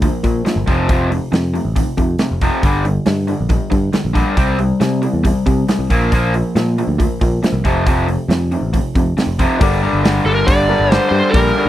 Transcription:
0.02 overdriven electric guitar A#2 F3, kick, open hi-hat
0.23 picked electric bass A#2, overdriven electric guitar A#2 F3, kick, open hi-hat
0.45 overdriven electric guitar A#2 F3, snare, open hi-hat
0.56 picked electric bass G1
0.67 picked electric bass F1, overdriven electric guitar F2 C3 F3, kick, open hi-hat
0.89 overdriven electric guitar F2 C3 F3, kick, open hi-hat
1.11 overdriven electric guitar F2 C3, open hi-hat
1.32 overdriven electric guitar F2 C3, picked electric bass F2, snare, open hi-hat
1.54 overdriven electric guitar F2 C3, open hi-hat
1.65 picked electric bass A1
1.76 overdriven electric guitar F2 C3, kick, open hi-hat
1.97 picked electric bass F2, overdriven electric guitar F2 C3, kick, open hi-hat
2.19 overdriven electric guitar F2 C3, snare, open hi-hat
2.31 picked electric bass F1
2.41 overdriven electric guitar F2 C3 F3, kick, open hi-hat
2.63 picked electric bass G1, overdriven electric guitar G2 D3 G3, kick, open hi-hat
2.85 overdriven electric guitar G2 D3, open hi-hat
3.06 overdriven electric guitar G2 D3, picked electric bass G2, snare, open hi-hat
3.27 overdriven electric guitar G2 D3, open hi-hat
3.41 picked electric bass A#1
3.49 overdriven electric guitar G2 D3, kick, open hi-hat
3.70 overdriven electric guitar G2 D3, picked electric bass G2, kick, open hi-hat
3.93 overdriven electric guitar G2 D3, snare, open hi-hat
4.05 picked electric bass A#1
4.13 overdriven electric guitar G2 D3 G3, kick, open hi-hat
4.36 picked electric bass C2, overdriven electric guitar C3 G3 C4, kick, open hi-hat
4.58 overdriven electric guitar C3 G3, open hi-hat
4.80 overdriven electric guitar C3 G3, picked electric bass C3, snare, open hi-hat
5.02 overdriven electric guitar C3 G3, open hi-hat
5.13 picked electric bass E2
5.23 overdriven electric guitar C3 G3, kick, open hi-hat
5.46 picked electric bass C3, overdriven electric guitar C3 G3, kick, open hi-hat
5.68 overdriven electric guitar C3 G3, snare, open hi-hat
5.79 picked electric bass C2
5.90 picked electric bass A#1, overdriven electric guitar A#2 F3 A#3, kick, open hi-hat
6.12 overdriven electric guitar A#2 F3 A#3, kick, open hi-hat
6.34 overdriven electric guitar A#2 F3, open hi-hat
6.55 picked electric bass A#2, overdriven electric guitar A#2 F3, snare, open hi-hat
6.78 overdriven electric guitar A#2 F3, open hi-hat
6.88 picked electric bass D2
6.99 overdriven electric guitar A#2 F3, kick, open hi-hat
7.21 picked electric bass A#2, overdriven electric guitar A#2 F3, kick, open hi-hat
7.43 overdriven electric guitar A#2 F3, snare, open hi-hat
7.53 picked electric bass C2
7.64 picked electric bass F1, overdriven electric guitar F2 C3 F3, kick, open hi-hat
7.86 overdriven electric guitar F2 C3 F3, kick, open hi-hat
8.08 overdriven electric guitar F2 C3, open hi-hat
8.28 picked electric bass F2, overdriven electric guitar F2 C3, snare, open hi-hat
8.52 overdriven electric guitar F2 C3, open hi-hat
8.61 picked electric bass A1
8.73 overdriven electric guitar F2 C3, kick, open hi-hat
8.95 picked electric bass F2, overdriven electric guitar F2 C3, kick, open hi-hat
9.17 overdriven electric guitar F2 C3, snare, open hi-hat
9.27 picked electric bass F1
9.39 overdriven electric guitar F2 C3 F3, kick, open hi-hat
9.59 picked electric bass G1, overdriven electric guitar G2 D3 G3, upright piano D4 G4 A#4 D5, kick, open hi-hat
9.83 overdriven electric guitar G2 D3 G3
9.93 picked electric bass G1
10.04 overdriven electric guitar G2 D3 G3, snare, open hi-hat
10.25 picked electric bass G1, overdriven electric guitar G2 D3 G3, electric slide guitar A4
10.35 electric slide guitar A#4
10.47 picked electric bass G1, overdriven electric guitar G2 D3 G3, electric slide guitar D5, kick, open hi-hat
10.68 overdriven electric guitar G2 D3 G3, upright piano D4 G4 A#4 D5
10.80 picked electric bass G1
10.91 overdriven electric guitar G2 D3 G3, electric slide guitar C5, snare, open hi-hat
11.09 picked electric bass G2, overdriven electric guitar G2, electric slide guitar C5
11.13 overdriven electric guitar D3 G3
11.30 picked electric bass A#1, overdriven electric guitar G2 D3, upright piano D4 G4, electric slide guitar A#4, kick, open hi-hat
11.35 overdriven electric guitar G3, upright piano A#4 D5
11.56 overdriven electric guitar G2 D3 G3
11.65 picked electric bass D2

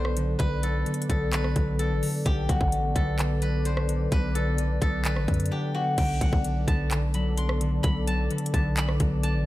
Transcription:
Already playing: 808-style bass B1, harp D3 F#3 B3 D4, analog synth pad B3 A4 D5, guzheng F#4 A4 C5
0.05 cross-stick
0.17 harp D3, closed hi-hat
0.39 808-style bass B1, harp D3, guzheng B4, kick, closed hi-hat
0.63 harp F#3, guzheng A4, closed hi-hat
0.86 harp D3, closed hi-hat
0.94 closed hi-hat
1.02 closed hi-hat
1.10 808-style bass B1, harp B3, guzheng A4, kick, closed hi-hat
1.32 harp D3, guzheng B4, clap, closed hi-hat
1.44 cross-stick
1.56 808-style bass B1, harp F#3, kick, closed hi-hat
1.79 harp D4, guzheng A4, closed hi-hat
1.91 808-style bass A1
2.02 harp D3, open hi-hat
2.25 808-style bass B1, harp D3, analog synth pad B3 D5, guzheng G4, kick, closed hi-hat
2.49 808-style bass B1, harp F#3, guzheng F#4, kick, closed hi-hat
2.61 808-style bass A1, kick
2.72 harp D3, closed hi-hat
2.96 808-style bass B1, harp B3, guzheng A4, kick, closed hi-hat
3.19 harp D3, clap, closed hi-hat
3.42 harp F#3, guzheng B4, closed hi-hat
3.65 harp D4, guzheng C5, closed hi-hat
3.77 cross-stick
3.89 harp D3, closed hi-hat
4.11 808-style bass B1, harp D3, guzheng B4, kick, closed hi-hat
4.35 harp F#3, guzheng A4, closed hi-hat
4.58 harp D3, closed hi-hat
4.81 808-style bass B1, harp B3, guzheng A4, kick, closed hi-hat
5.05 harp D3, guzheng B4, clap, closed hi-hat
5.16 808-style bass A1, cross-stick
5.28 808-style bass F#2, harp F#3, kick, closed hi-hat
5.34 closed hi-hat
5.40 closed hi-hat
5.46 closed hi-hat
5.51 harp D4, guzheng G4
5.74 harp D3, guzheng F#4
5.98 808-style bass B1, harp D3, analog synth pad B3 A4 D5, guzheng G5, kick, closed hi-hat, crash
6.21 808-style bass B1, harp F#3, guzheng F#5, kick, closed hi-hat
6.33 808-style bass B1, kick
6.44 harp D3, closed hi-hat
6.67 808-style bass B1, harp B3, guzheng A5, kick, closed hi-hat
6.91 harp D3, clap, closed hi-hat
7.14 harp F#3, guzheng B5, closed hi-hat
7.37 harp D4, guzheng C6, closed hi-hat
7.49 cross-stick
7.61 harp D3, closed hi-hat
7.83 808-style bass B1, harp D3, guzheng B5, kick, closed hi-hat
8.07 harp F#3, guzheng A5, closed hi-hat
8.31 harp D3, closed hi-hat
8.38 closed hi-hat
8.46 closed hi-hat
8.54 808-style bass B1, harp B3, guzheng A5, kick, closed hi-hat
8.77 harp D3, guzheng B5, clap, closed hi-hat
8.89 cross-stick
9.00 808-style bass B1, harp F#3, kick, closed hi-hat
9.23 harp D4, guzheng A5, closed hi-hat
9.35 808-style bass A1

